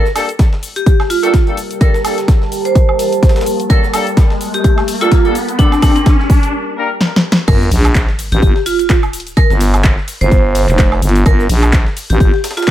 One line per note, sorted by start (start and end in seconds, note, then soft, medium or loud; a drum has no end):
0.00 6.53 G4 medium
0.00 riser medium
0.05 snare soft
0.05 shaker soft
0.16 0.28 G3 medium
0.16 0.28 A#3 medium
0.16 0.28 D4 medium
0.16 0.28 A4 loud
0.16 6.53 A#4 medium
0.16 closed hi-hat medium
0.16 open hi-hat loud
0.16 high woodblock medium
0.16 shaker medium
0.29 closed hi-hat medium
0.29 shaker soft
0.39 kick medium
0.39 snare loud
0.39 closed hi-hat medium
0.39 shaker soft
0.53 snare medium
0.63 closed hi-hat medium
0.63 open hi-hat medium
0.63 shaker medium
0.76 0.83 G4 medium
0.76 closed hi-hat medium
0.76 closed hi-hat soft
0.76 shaker soft
0.80 6.53 A5 medium
0.86 0.95 G4 medium
0.86 kick loud
0.86 closed hi-hat medium
0.86 shaker soft
1.00 snare medium
1.00 high woodblock medium
1.10 1.19 F4 medium
1.10 closed hi-hat medium
1.10 open hi-hat medium
1.10 shaker medium
1.23 1.33 G3 medium
1.23 1.33 A#3 medium
1.23 1.33 D4 medium
1.23 1.30 F4 medium
1.23 1.33 A4 loud
1.23 closed hi-hat medium
1.23 shaker soft
1.34 kick loud
1.34 snare loud
1.34 closed hi-hat medium
1.34 shaker soft
1.47 1.56 G3 medium
1.47 1.56 A#3 medium
1.47 1.56 D4 medium
1.47 1.56 A4 medium
1.47 closed hi-hat soft
1.57 closed hi-hat medium
1.57 open hi-hat medium
1.57 shaker medium
1.71 closed hi-hat medium
1.71 shaker soft
1.81 1.93 G3 medium
1.81 1.93 A#3 medium
1.81 1.93 D4 medium
1.81 1.93 A4 medium
1.81 1.98 A#4 medium
1.81 kick loud
1.81 closed hi-hat medium
1.81 shaker soft
1.94 snare medium
1.94 shaker soft
2.05 2.16 G3 medium
2.05 2.17 A#3 medium
2.05 2.17 D4 medium
2.05 2.17 A4 medium
2.05 closed hi-hat medium
2.05 open hi-hat loud
2.05 high woodblock medium
2.05 shaker medium
2.18 snare soft
2.18 closed hi-hat soft
2.18 shaker soft
2.28 kick loud
2.28 snare loud
2.28 closed hi-hat medium
2.28 shaker soft
2.42 snare soft
2.52 closed hi-hat medium
2.52 open hi-hat medium
2.52 shaker medium
2.65 3.31 C5 medium
2.65 closed hi-hat medium
2.65 shaker soft
2.75 kick loud
2.75 closed hi-hat medium
2.75 shaker soft
2.89 high woodblock medium
2.99 closed hi-hat medium
2.99 open hi-hat loud
2.99 shaker medium
3.12 closed hi-hat soft
3.12 closed hi-hat medium
3.12 shaker soft
3.23 kick loud
3.23 snare medium
3.23 closed hi-hat medium
3.23 shaker soft
3.29 snare medium
3.29 closed hi-hat medium
3.36 snare medium
3.36 closed hi-hat medium
3.41 snare medium
3.41 closed hi-hat medium
3.46 closed hi-hat medium
3.46 open hi-hat medium
3.46 shaker medium
3.60 closed hi-hat medium
3.60 shaker soft
3.70 3.82 G3 medium
3.70 3.82 A#3 medium
3.70 3.82 D4 medium
3.70 3.82 A4 medium
3.70 3.87 A#4 medium
3.70 kick loud
3.70 closed hi-hat medium
3.70 shaker soft
3.83 snare soft
3.83 shaker soft
3.94 4.05 G3 loud
3.94 4.05 A#3 medium
3.94 4.05 D4 medium
3.94 4.05 A4 loud
3.94 closed hi-hat medium
3.94 open hi-hat loud
3.94 high woodblock medium
3.94 shaker medium
4.07 closed hi-hat soft
4.07 shaker soft
4.17 kick loud
4.17 snare loud
4.17 closed hi-hat medium
4.17 shaker soft
4.30 snare medium
4.41 closed hi-hat medium
4.41 open hi-hat medium
4.41 shaker medium
4.54 4.61 G4 medium
4.54 closed hi-hat medium
4.54 closed hi-hat soft
4.54 shaker soft
4.64 4.73 G4 medium
4.64 kick loud
4.64 closed hi-hat medium
4.64 shaker soft
4.78 snare medium
4.78 high woodblock medium
4.88 closed hi-hat medium
4.88 open hi-hat loud
4.88 shaker medium
5.01 5.11 G3 medium
5.01 5.11 A#3 medium
5.01 5.11 D4 medium
5.01 5.08 F4 medium
5.01 5.11 A4 loud
5.01 closed hi-hat medium
5.01 shaker soft
5.12 5.20 F4 medium
5.12 kick loud
5.12 snare loud
5.12 closed hi-hat medium
5.12 shaker soft
5.25 5.34 G3 medium
5.25 5.34 A#3 medium
5.25 5.34 D4 medium
5.25 5.34 A4 medium
5.25 closed hi-hat soft
5.35 closed hi-hat medium
5.35 open hi-hat loud
5.35 shaker medium
5.49 closed hi-hat soft
5.49 shaker soft
5.59 5.71 G3 medium
5.59 5.71 A#3 medium
5.59 5.80 D4 medium
5.59 5.71 D4 medium
5.59 5.71 A4 medium
5.59 kick loud
5.59 closed hi-hat medium
5.59 shaker soft
5.72 snare medium
5.72 high woodblock medium
5.72 shaker soft
5.82 5.95 G3 medium
5.82 5.94 A#3 medium
5.82 5.91 D4 medium
5.82 5.94 D4 medium
5.82 5.94 A4 medium
5.82 kick loud
5.82 closed hi-hat medium
5.82 open hi-hat loud
5.82 high woodblock medium
5.82 shaker medium
5.96 6.02 D4 medium
5.96 snare soft
5.96 closed hi-hat soft
5.96 shaker soft
6.06 kick loud
6.06 snare loud
6.06 closed hi-hat medium
6.06 shaker soft
6.19 snare soft
6.30 kick loud
6.30 open hi-hat medium
6.30 shaker medium
6.43 closed hi-hat medium
6.43 shaker soft
6.77 6.89 G3 medium
6.77 6.89 A#3 medium
6.77 6.89 D4 medium
6.77 6.89 A#4 medium
7.01 snare medium
7.16 snare medium
7.32 snare loud
7.48 7.70 G1 loud
7.48 7.65 A#4 medium
7.48 kick loud
7.48 closed hi-hat medium
7.48 crash loud
7.48 sub drop medium
7.48 high woodblock medium
7.48 shaker soft
7.61 snare soft
7.61 shaker soft
7.71 8.06 A#1 loud
7.71 closed hi-hat medium
7.71 open hi-hat loud
7.71 ride medium
7.71 shaker medium
7.85 clap soft
7.85 closed hi-hat medium
7.85 high woodblock medium
7.85 shaker soft
7.95 kick loud
7.95 snare loud
7.95 clap loud
7.95 closed hi-hat medium
7.95 shaker soft
8.09 snare medium
8.19 closed hi-hat medium
8.19 open hi-hat medium
8.19 ride medium
8.19 shaker medium
8.32 8.41 A1 loud
8.32 8.39 G4 medium
8.32 closed hi-hat medium
8.32 closed hi-hat soft
8.32 shaker soft
8.42 8.54 G1 loud
8.42 8.51 G4 medium
8.42 kick loud
8.42 closed hi-hat soft
8.42 closed hi-hat medium
8.42 shaker soft
8.56 snare medium
8.66 8.75 F4 medium
8.66 closed hi-hat medium
8.66 open hi-hat loud
8.66 ride medium
8.66 shaker medium
8.79 8.86 F4 medium
8.79 closed hi-hat medium
8.79 shaker soft
8.90 kick loud
8.90 snare loud
8.90 clap loud
8.90 closed hi-hat medium
8.90 shaker soft
9.03 closed hi-hat soft
9.03 high woodblock medium
9.13 closed hi-hat medium
9.13 open hi-hat medium
9.13 ride medium
9.13 shaker medium
9.20 closed hi-hat medium
9.27 closed hi-hat medium
9.27 shaker soft
9.37 9.54 A#4 medium
9.37 kick loud
9.37 closed hi-hat medium
9.37 high woodblock medium
9.37 shaker soft
9.50 9.95 G1 loud
9.50 snare medium
9.50 shaker soft
9.61 closed hi-hat medium
9.61 open hi-hat loud
9.61 ride medium
9.61 shaker medium
9.74 snare soft
9.74 closed hi-hat medium
9.74 high woodblock medium
9.74 shaker soft
9.84 kick loud
9.84 snare loud
9.84 clap loud
9.84 closed hi-hat medium
9.84 shaker soft
9.98 snare soft
10.08 closed hi-hat medium
10.08 open hi-hat medium
10.08 ride medium
10.08 shaker medium
10.21 10.66 G1 loud
10.21 10.87 C5 medium
10.21 closed hi-hat medium
10.21 shaker soft
10.31 kick loud
10.31 closed hi-hat soft
10.31 closed hi-hat medium
10.31 shaker soft
10.55 closed hi-hat medium
10.55 open hi-hat loud
10.55 ride medium
10.55 shaker medium
10.68 11.01 F1 loud
10.68 clap soft
10.68 closed hi-hat medium
10.68 closed hi-hat soft
10.68 shaker soft
10.79 kick loud
10.79 snare loud
10.79 clap loud
10.79 closed hi-hat medium
10.79 shaker soft
10.92 snare medium
10.92 high woodblock medium
11.02 11.24 G1 medium
11.02 closed hi-hat medium
11.02 open hi-hat medium
11.02 ride medium
11.02 shaker medium
11.09 closed hi-hat medium
11.16 closed hi-hat medium
11.16 shaker soft
11.26 11.48 G1 loud
11.26 11.43 A#4 medium
11.26 kick loud
11.26 closed hi-hat medium
11.26 high woodblock medium
11.26 shaker soft
11.39 snare soft
11.39 shaker soft
11.49 11.84 A#1 medium
11.49 closed hi-hat medium
11.49 open hi-hat loud
11.49 ride medium
11.49 shaker medium
11.63 clap soft
11.63 closed hi-hat medium
11.63 high woodblock medium
11.63 shaker soft
11.73 kick loud
11.73 snare loud
11.73 clap loud
11.73 closed hi-hat medium
11.73 shaker soft
11.87 snare medium
11.97 closed hi-hat medium
11.97 open hi-hat medium
11.97 ride medium
11.97 shaker medium
12.10 12.19 A1 loud
12.10 12.17 G4 medium
12.10 closed hi-hat medium
12.10 closed hi-hat soft
12.10 shaker soft
12.20 12.32 G1 loud
12.20 12.29 G4 medium
12.20 kick loud
12.20 closed hi-hat soft
12.20 closed hi-hat medium
12.20 shaker soft
12.34 snare medium
12.44 snare medium
12.44 closed hi-hat medium
12.44 open hi-hat loud
12.44 ride medium
12.44 shaker medium
12.51 snare medium
12.51 closed hi-hat medium
12.57 12.64 F4 medium
12.57 snare medium
12.57 closed hi-hat medium
12.57 shaker soft
12.62 snare medium
12.62 closed hi-hat medium
12.68 12.71 F4 medium
12.68 kick loud
12.68 snare loud
12.68 closed hi-hat medium